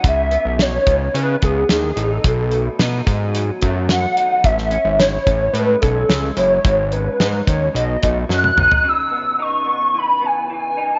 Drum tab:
HH |x-x-x-x-x-x-x-x-|x-x-x-x-x-x-x-x-|x-x-x-x-x-x-x-x-|x-x-x-x-x-x-----|
SD |----o-------o---|----o-------o---|-o--o-------o---|----o-------o---|
T1 |----------------|----------------|----------------|-------------o--|
T2 |----------------|----------------|----------------|--------------o-|
FT |----------------|----------------|----------------|---------------o|
BD |o-----o---o-----|o-----o---o-----|o-----o---o-----|o-----o---o-----|

HH |----------------|
SD |----------------|
T1 |----------------|
T2 |----------------|
FT |----------------|
BD |----------------|